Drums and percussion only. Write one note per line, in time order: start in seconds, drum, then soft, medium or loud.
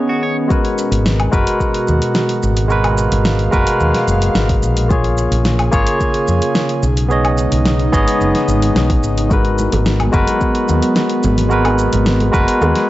0.50 kick loud
0.50 shaker soft
0.65 open hi-hat soft
0.78 shaker medium
0.92 open hi-hat medium
0.92 shaker soft
1.06 snare loud
1.06 shaker soft
1.20 open hi-hat soft
1.20 low woodblock medium
1.33 kick loud
1.33 shaker medium
1.47 open hi-hat medium
1.47 shaker soft
1.60 kick medium
1.60 shaker soft
1.74 open hi-hat soft
1.88 shaker medium
2.02 open hi-hat medium
2.02 shaker soft
2.15 snare loud
2.15 shaker soft
2.29 open hi-hat soft
2.43 shaker medium
2.57 open hi-hat medium
2.57 shaker soft
2.70 shaker soft
2.84 open hi-hat soft
2.84 low woodblock medium
2.98 shaker medium
3.12 open hi-hat medium
3.12 shaker soft
3.25 snare loud
3.25 shaker soft
3.39 open hi-hat soft
3.53 kick loud
3.53 shaker medium
3.67 open hi-hat medium
3.67 shaker soft
3.80 shaker soft
3.94 snare soft
3.94 open hi-hat soft
4.08 shaker medium
4.22 open hi-hat medium
4.22 shaker soft
4.35 snare loud
4.35 shaker soft
4.49 kick loud
4.49 open hi-hat soft
4.63 shaker medium
4.77 open hi-hat medium
4.77 shaker soft
4.90 kick loud
4.90 shaker soft
5.04 open hi-hat soft
5.18 shaker medium
5.32 open hi-hat medium
5.32 shaker soft
5.45 snare loud
5.45 shaker soft
5.59 open hi-hat soft
5.59 low woodblock medium
5.73 kick loud
5.73 shaker medium
5.87 open hi-hat medium
5.87 shaker soft
6.00 kick medium
6.00 shaker soft
6.14 open hi-hat soft
6.28 shaker medium
6.42 open hi-hat medium
6.42 shaker soft
6.55 snare loud
6.55 shaker soft
6.69 open hi-hat soft
6.83 shaker medium
6.97 open hi-hat medium
6.97 shaker soft
7.11 shaker soft
7.25 open hi-hat soft
7.25 low woodblock medium
7.38 shaker medium
7.52 open hi-hat medium
7.52 shaker soft
7.66 snare loud
7.66 shaker soft
7.79 open hi-hat soft
7.93 kick loud
7.93 shaker medium
8.08 open hi-hat medium
8.08 shaker medium
8.21 shaker soft
8.35 snare soft
8.35 open hi-hat soft
8.48 shaker medium
8.62 open hi-hat medium
8.62 shaker soft
8.76 snare loud
8.76 shaker soft
8.90 kick loud
8.90 open hi-hat soft
9.03 shaker medium
9.18 open hi-hat medium
9.18 shaker soft
9.31 kick loud
9.31 high bongo soft
9.31 shaker soft
9.45 open hi-hat soft
9.58 high conga medium
9.58 shaker medium
9.72 open hi-hat medium
9.72 high bongo medium
9.72 low conga medium
9.72 shaker soft
9.86 snare medium
9.86 shaker soft
10.00 open hi-hat soft
10.00 high conga medium
10.00 low woodblock medium
10.13 kick loud
10.13 shaker medium
10.27 open hi-hat medium
10.27 high bongo soft
10.27 shaker soft
10.41 kick medium
10.41 shaker soft
10.55 open hi-hat soft
10.68 high bongo medium
10.68 high conga medium
10.68 shaker medium
10.82 open hi-hat soft
10.82 shaker soft
10.96 snare loud
10.96 shaker soft
11.09 open hi-hat soft
11.23 high bongo medium
11.23 low conga medium
11.23 shaker medium
11.38 open hi-hat medium
11.38 low conga medium
11.38 shaker soft
11.51 shaker soft
11.65 open hi-hat soft
11.65 high bongo medium
11.65 low woodblock medium
11.79 shaker medium
11.93 open hi-hat medium
11.93 low conga medium
11.93 shaker soft
12.06 snare medium
12.06 shaker soft
12.20 open hi-hat soft
12.20 high bongo medium
12.20 high conga medium
12.34 kick loud
12.34 shaker medium
12.48 open hi-hat medium
12.48 shaker soft
12.62 high bongo medium
12.62 shaker soft
12.75 snare soft
12.75 open hi-hat soft